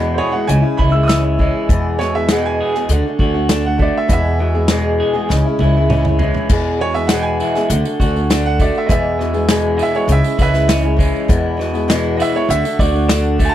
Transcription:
Already playing: E2 B2 E3 G#3 B3 E4
0.14 C5 C#5
0.19 G#4
0.31 E3 G#3 B3 E4 F#5
0.47 C#2 C#3 E3 G#3 C#4 E4 G#5, closed hi-hat
0.61 G#3 C#4 E4
0.77 C#2 E3 G#3 C#4 E4 B5, kick
0.91 G#3 C#4 E4 E6
1.03 C#3 E3 D#6
1.08 G#3 C#4 E4 E6, snare, closed hi-hat
1.23 G#3 C#4 E4
1.38 E3 G#3 C#4 E4, kick
1.69 E2 B2 E3 G#3 B3 G#4, kick, closed hi-hat
1.99 B2 E3 G#3 B3 G#4 C#5, snare
2.14 E3 G#3 B3 G#4 E5
2.29 E2 B2 E3 G#3 B3 G#4 F#5, snare, closed hi-hat
2.41 G5
2.46 G#5
2.60 G#4
2.75 E3 G#3 B3 G#4, snare
2.89 D2 D3 A3 D4 F#4, closed hi-hat
3.06 A3 D4 F#4
3.19 D2 D3 A3 D4 F#4, kick
3.24 F#4
3.34 A3 D4 F#4
3.49 D3 A3 D4 F#4, snare, closed hi-hat
3.65 A3 D4 F#4 F#5
3.77 D3 A3 D4 F#4, kick
3.82 D5
3.97 E5
4.08 E2 B2 E3 G#3 B3 G#4 D#5, kick, closed hi-hat
4.13 E5
4.39 B2 E3 G#3 B3 G#4
4.54 E3 G#3 B3 G#4
4.68 E2 B2 E3 G#3 B3 G#4, snare, closed hi-hat
5.00 G#4
5.13 E3 G#3 B3 G#4
5.29 C#2 C#3 E3 G#3 C#4 E4, snare
5.45 G#3 C#4 E4
5.59 C#2 E3 G#3, high tom
5.63 C#4 E4
5.77 G#3 C#4 E4
5.90 C#3 E3 G#3 C#4 E4, mid tom
6.05 C#4 E4, mid tom
6.09 G#3
6.19 E3 G#3, floor tom
6.23 C#4 E4
6.34 floor tom
6.49 E2 B2 E3 G#3 B3 G#4, kick, closed hi-hat, crash, tambourine
6.79 B2 E3 G#3 B3 G#4 C#5
6.94 E3 G#3 B3 G#4 E5, tambourine
7.07 E2 B2 F#5, snare, closed hi-hat, tambourine
7.12 E3 G#3 B3 G#4
7.19 G5 G#5
7.40 E4, tambourine
7.55 E3 G#3 B3 G#4, snare, tambourine
7.70 D2 D3 A3 D4 F#4, closed hi-hat
7.84 A3 D4 F#4, tambourine
8.00 D2 D3 A3 D4 F#4, kick, tambourine
8.14 A3 D4 F#4, tambourine
8.30 D3 A3 D4 F#4, snare, closed hi-hat, tambourine
8.46 F#5
8.59 D3 A3 D4 F#4 D5, kick, tambourine
8.75 E5, tambourine
8.86 E2 B2 E3 G#3 B3 D#5, kick, closed hi-hat, tambourine
8.91 G#4 E5
9.19 B2 E3 G#3 B3 G#4, snare
9.33 E3 G#3 B3 G#4, tambourine
9.49 E2 B2 E3 G#3 B3 G#4, snare, closed hi-hat, tambourine
9.77 E4 D#5, tambourine
9.83 E5
9.94 E3 G#3 B3 G#4 C#5, tambourine
10.08 C#2 C#3 E3 G#3 C#4 E4, closed hi-hat
10.12 E5
10.24 G#3 C#4 E4, tambourine
10.37 C#2 E3 G#3 C#4 E4, kick, tambourine
10.41 B4 E5
10.53 G#3 C#4 E4, snare, tambourine
10.67 C#3 E3 G#3 C#4 E4, snare, closed hi-hat, tambourine
10.83 G#3 C#4 E4
10.97 E3 G#3 C#4 E4, kick, tambourine
11.15 tambourine
11.28 E2 B2 E3 G#3 B3 E4, kick, closed hi-hat, tambourine
11.57 B2 E3 G#3 B3 E4, snare
11.73 E3 G#3 B3 E4, tambourine
11.88 E2 B2 E3 G#3 B3 E4, snare, closed hi-hat, tambourine
12.17 E4 D#5, tambourine
12.22 E5
12.33 E3 G#3 B3 E4 C#5, tambourine
12.49 D2 D3 A3 D4 F#4 E5, closed hi-hat
12.64 A3 D4 F#4, tambourine
12.79 D2 D3 A3 D4 F#4 D5, kick, tambourine
12.92 A3 D4 F#4, tambourine
13.08 D3 A3 D4 F#4, snare, closed hi-hat, tambourine
13.38 D3 A3 D4 F#4, kick, tambourine
13.45 G#5
13.49 A5

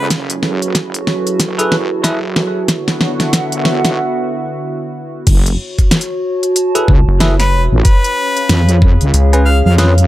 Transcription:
Already playing: C#4 G#4 C#5 F5
0.10 F#1 F#3 E4 F#4 G#4 A4 B4, kick, snare, closed hi-hat
0.30 closed hi-hat
0.43 snare
0.62 F#1, closed hi-hat
0.75 kick, snare, closed hi-hat
0.94 closed hi-hat
1.07 snare
1.27 closed hi-hat
1.40 F#1, kick, snare, closed hi-hat
1.58 E4 G#4 A4 B4, closed hi-hat
1.72 snare
1.91 F#1
2.04 E4 G#4 A4 B4, kick, snare, closed hi-hat
2.36 snare
2.68 D3 B3 D4 F#4, kick, snare, closed hi-hat
2.88 snare, closed hi-hat
2.97 A4 F#5, snare
3.02 E5
3.20 snare, closed hi-hat
3.33 kick, snare, closed hi-hat
3.52 F#1, closed hi-hat
3.65 snare
3.85 B1, snare, closed hi-hat
5.27 F#1 F#4, kick, closed hi-hat, crash
5.38 C#5
5.46 closed hi-hat
5.79 kick, closed hi-hat
5.91 snare, closed hi-hat
6.01 closed hi-hat
6.25 A5
6.43 closed hi-hat
6.56 closed hi-hat
6.75 E4 G#4 A4 B4, closed hi-hat
6.88 C#2, kick
7.08 F#1
7.20 E4 G#4 A4 B4, snare, closed hi-hat
7.40 B4, snare, closed hi-hat
7.51 F1
7.72 A1
7.85 C#4 B4, kick, closed hi-hat
8.04 closed hi-hat
8.10 G#4 F5
8.37 closed hi-hat
8.49 F2, snare, closed hi-hat
8.69 closed hi-hat
8.82 kick
9.01 C#2, closed hi-hat
9.14 C#2, closed hi-hat
9.33 C#4 F4 G#4 B4, closed hi-hat
9.45 F5
9.65 F2 F5
9.78 C#4 F4 G#4 B4, snare, closed hi-hat
9.98 closed hi-hat

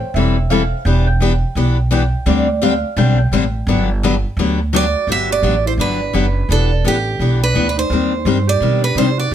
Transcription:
Already playing: C5 E5 G5
0.14 E1 E3 G3 C4 E4 A4 E5
0.50 E3 G3 C4 E4 A4 F5
0.85 E1 E3 B3 D4 G4 G5
1.07 G5
1.20 E3 B3 D4 G4
1.55 B1 E3 B3 D4 G4
1.91 E3 B3 D4 G4 G5
2.26 D2 D3 G3 C4 D4 G4 D5
2.62 D3 G3 C4 D4 G4 F5
2.97 B1 D3 G3 C4 D4 G4 G5
3.18 G5
3.32 A1 D3 G3 C4 D4 G4
3.67 G1 D3 F#3 B3 D4 G4
4.03 D3 F#3 B3 D4 G4
4.37 D2 D3 F#3 B3 D4 G4
4.73 D3 F#3 B3 D4 F#4 G4 D5
5.07 G1 D3 F#3 B3 D4 G4
5.12 E5
5.30 F#4 D5
5.42 A1 D3 F#3 B3 D4 G4
5.66 E4 C5
5.77 G1 D3 F#3 B3 D4 G4 B4
6.13 F#1 D3 F#3 B3 D4 G4
6.49 E1 E3 B3 D4 G4 A4
6.84 A1 E3 B3 D4 G4
7.19 B1 E3 B3 D4 G4
7.43 D4 B4
7.54 D2 E3 B3 D4 G4
7.69 D4 B4
7.76 D#4 C5
7.90 D#2 D#3 G3 C4 D4 G4
8.25 G2 D#3 G3 C4 D4 G4
8.47 G4 D5
8.60 B2 D#3 G3 C4 D4 G4
8.82 D4 B4
8.95 C3 D#3 G3 C4 D4 D#4 G4 C5
9.18 F#4 D5
9.31 D3

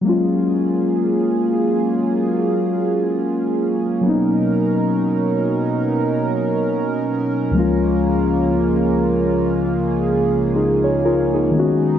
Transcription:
0.01 F#3 G#3 A#3 C#4 F4 G#4
0.07 C#4 F4
4.01 B2 F#3 A#3 D#4 A#4
4.05 B3 C#4 D#4
7.51 C#2 C#3 F3 G#3 A#3 F4
7.56 A#3 C#4 F4
9.54 G#4
10.55 D#4 G#4
10.84 G#4 C#5
11.05 F4 A#4
11.34 D#4 G#4
11.51 D#3 F#3 G#3 B3 D#4
11.57 C#4 F#4

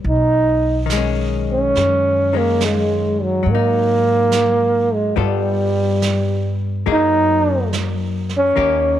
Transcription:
0.04 B1, brush sweep
0.08 D#4
0.86 D#3, snare, hi-hat pedal
0.92 G#3
0.97 C#4
1.52 C#4
1.75 F#2, brush sweep, snare
2.33 D#3 G#3 A#3 C#4
2.61 snare, hi-hat pedal
2.66 G#3
3.23 F#3
3.43 G#2 F#3, brush sweep
3.50 A#3
3.55 D#4
4.32 snare, hi-hat pedal
4.94 G#3
5.16 G2 F#3 G3 B3 F4 A4, brush sweep
5.23 G3
6.02 snare, hi-hat pedal
6.86 F#2 F#3 A#3 D#4 G#4, brush sweep
6.92 D#4
7.73 snare, hi-hat pedal
8.29 snare
8.37 C#4
8.56 D#2 D#3 A#3 C#4 G4, brush sweep

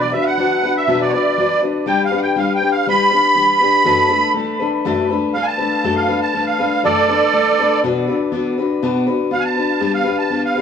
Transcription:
Already playing: B2 F#3 D4 F#4 B4
0.01 D5
0.12 D4 F#4 B4 E5
0.22 F5
0.27 F#5
0.37 F#3 D4 F#4 B4
0.63 D4 F#4 B4
0.77 E5
0.87 B2 F#3 D4 F#4 B4
1.01 D5
1.09 C#5
1.13 D4 F#4 B4 D5
1.37 F#3 D4 F#4 B4
1.62 D4 F#4 B4
1.86 G3 D4 G4 B4 G5
2.05 F5
2.11 D4 G4 B4
2.17 F#5
2.22 G5
2.36 G3 D4 G4 B4 F5
2.55 G5
2.61 D4 G4 B4
2.71 F5
2.86 G3 D4 G4 B4 B5
3.10 D4 G4 B4
3.35 G3 D4 G4 B4
3.60 D4 G4 B4
3.84 F#2 F#3 A3 D4 A4 B4
4.09 A3 D4 A4 B4
4.34 A3 D4 A4 B4
4.59 A3 D4 A4 B4
4.85 F#2 F#3 A3 D4 A4 B4
5.10 A3 D4 A4 B4
5.34 A3 D4 A4 B4 F5
5.43 G#5 A5
5.58 A3 D4 A4 B4
5.84 F#2 F#3 A3 D4 A4 B4
5.96 F5
6.08 A3 D4 A4 B4
6.21 A5
6.34 A3 D4 A4 B4
6.46 F5
6.59 A3 D4 A4 B4
6.83 F#2 F#3 A3 D4 A4 B4 D5
7.08 A3 D4 A4 B4
7.33 A3 D4 A4 B4
7.59 A3 D4 A4 B4
7.83 B2 B3 D4 F#4 B4
8.07 D4 F#4 B4
8.31 B3 D4 F#4 B4
8.57 D4 F#4 B4
8.82 B2 B3 D4 F#4 B4
9.07 D4 F#4 B4
9.31 B3 D4 F#4 B4 F5
9.40 G#5
9.45 A5
9.56 D4 F#4 B4
9.80 G3 B3 D4 G4 B4
9.94 F5
10.04 D4 G4 B4
10.18 A5
10.30 B3 D4 G4 B4
10.45 F5
10.55 D4 G4 B4

